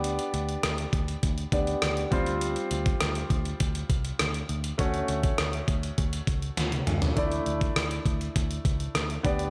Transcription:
<<
  \new Staff \with { instrumentName = "Grand piano" } { \time 4/4 \key d \major \tempo 4 = 101 <b d' g' d''>2~ <b d' g' d''>8 <b d' g' d''>4 <g c' f' c''>8~ | <g c' f' c''>2.~ <g c' f' c''>8 r8 | <a cis' fis' cis''>1 | <a d' e' d''>2.~ <a d' e' d''>8 <b d' g' d''>8 | }
  \new Staff \with { instrumentName = "Picked electric bass" } { \clef bass \time 4/4 \key d \major d,8 d,8 d,8 d,8 d,8 d,8 d,8 d,8~ | d,8 d,8 d,8 d,8 d,8 c,8 d,8 d,8 | d,8 d,8 d,8 d,8 d,8 cis,8 d,8 d,8 | d,8 d,8 d,8 d,8 d,8 cis,8 d,8 d,8 | }
  \new DrumStaff \with { instrumentName = "Drums" } \drummode { \time 4/4 hh16 hh16 hh16 hh16 <hh ss>16 hh16 <hh bd>16 hh16 <hh bd>16 hh16 <hh bd>16 hh16 <hh ss>16 hh16 <hh bd>16 hh16 | hh16 hh16 hh16 <hh bd>16 <hh ss>16 hh16 <hh bd>16 hh16 <hh bd>16 hh16 <hh bd>16 hh16 <hh ss>16 hh16 hh16 hh16 | <hh bd>16 hh16 hh16 <hh bd>16 <hh ss>16 hh16 <hh bd>16 hh16 <hh bd>16 hh16 <hh bd>16 hh16 <hh sn>16 <hh tommh>16 <hh toml>16 <hh tomfh>16 | <hh bd>16 hh16 hh16 <hh bd>16 <hh ss>16 hh16 <hh bd>16 hh16 <hh bd>16 hh16 <hh bd>16 hh16 <hh ss>16 hh16 <hh bd>16 hh16 | }
>>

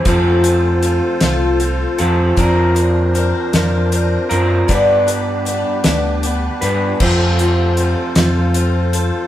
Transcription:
<<
  \new Staff \with { instrumentName = "Accordion" } { \time 6/8 \key f \major \tempo 4. = 52 <f' a' c''>2. | <d' bes' c''>2. | <d' g' b'>2. | <f' a' c''>2. | }
  \new Staff \with { instrumentName = "Twelve-string acoustic guitar" } { \time 6/8 \key f \major <f c' f' a'>8 <c' f' a'>8 <f c' f' a'>8 <f c' f' a'>8 <f c' f' a'>8 <c' f' a'>8 | <f c' d' bes'>8 <c' d' bes'>8 <f c' d' bes'>8 <f c' d' bes'>8 <f c' d' bes'>8 <c' d' bes'>8 | <g, d g b d' b'>8 <g b d' b'>8 <g b d' b'>8 <g, d g b d' b'>8 <g b d' b'>8 <g b d' b'>8 | <f c' f' a'>8 <c' f' a'>8 <f c' f' a'>8 <f c' f' a'>8 <f c' f' a'>8 <c' f' a'>8 | }
  \new Staff \with { instrumentName = "Clean electric guitar" } { \time 6/8 \key f \major <f a c' f' a'>2~ <f a c' f' a'>8 <f a c' f' a'>8 | <d f c' f' bes'>2~ <d f c' f' bes'>8 <d f c' f' bes'>8 | <g b d' b'>2~ <g b d' b'>8 <g b d' b'>8 | <f, c f a c' f'>2. | }
  \new Staff \with { instrumentName = "Fingered electric bass" } { \clef bass \time 6/8 \key f \major f,4. c,4 f,8 | f,4. f,4 fis,8 | g,4. d,4 g,8 | f,4. f,4. | }
  \new DrumStaff \with { instrumentName = "Drums" } \drummode { \time 6/8 <hh bd>8 hh8 hh8 <hh sn>8 hh8 hh8 | <hh bd>8 hh8 hh8 <hh sn>8 hh8 hh8 | <hh bd>8 hh8 hh8 <hh sn>8 hh8 hh8 | <cymc bd>8 hh8 hh8 <hh sn>8 hh8 hh8 | }
>>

